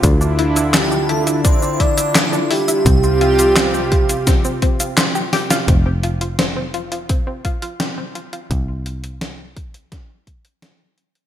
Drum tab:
HH |x-xxx-xxx-xxx-ox|x-xxx-xxx-xxx-ox|x-xxx-xxx-xxx-xx|x-xxx-xxx-xxx-xx|
SH |xx-xxx-xxx-xxx-x|xx-xxx-xxx-xxx-x|----------------|----------------|
CP |----x-------x---|----x-------x---|----------------|----------------|
SD |----o-------o---|----o---o---o-oo|----o-------o---|----o---o---o---|
BD |o-------o-o-----|o-----o-o-o-----|o-------o-o-----|o-----o-o-o-----|